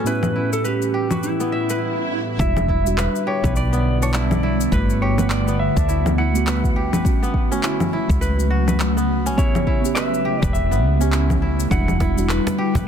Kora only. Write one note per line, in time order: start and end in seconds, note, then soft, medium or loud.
0.00 1.40 B3 medium
0.00 1.68 C#4 medium
0.00 0.65 F#4 medium
0.00 0.59 B4 medium
0.06 0.35 E4 medium
0.36 1.92 E4 medium
0.64 1.11 B4 medium
0.94 2.35 G4 medium
1.11 1.70 B4 medium
1.40 3.27 B3 medium
1.52 2.56 E5 medium
1.70 2.93 B4 medium
2.40 2.69 E4 medium
2.69 4.14 E4 medium
2.98 3.43 B4 loud
3.27 4.68 G4 medium
3.43 4.66 B4 medium
3.73 5.47 B3 medium
4.02 5.70 D4 medium
4.14 4.43 E4 medium
4.43 5.88 E4 medium
4.72 5.18 B4 loud
5.02 6.43 G4 medium
5.19 6.42 B4 medium
5.48 7.22 B3 medium
5.76 7.44 D4 medium
5.89 6.18 E4 medium
6.18 7.63 E4 medium
6.47 6.93 B4 medium
6.76 8.17 G4 medium
6.93 8.16 B4 medium
7.23 8.96 B3 medium
7.52 9.25 C#4 medium
7.63 7.93 E4 medium
7.93 9.37 E4 medium
8.21 8.67 B4 medium
8.50 9.97 F#4 medium
8.68 9.91 B4 medium
8.97 10.71 B3 medium
9.26 11.00 C#4 medium
9.38 9.66 E4 medium
9.67 11.12 E4 medium
9.96 10.42 B4 loud
10.25 11.66 G4 medium
10.42 11.65 B4 medium
10.71 12.58 B3 medium
11.01 12.75 C#4 medium
11.12 11.42 E4 medium
11.42 11.71 E4 medium
11.71 12.00 E4 medium
12.00 12.88 E4 medium
12.29 12.75 B4 loud
12.58 12.88 G4 medium
12.76 12.88 B4 medium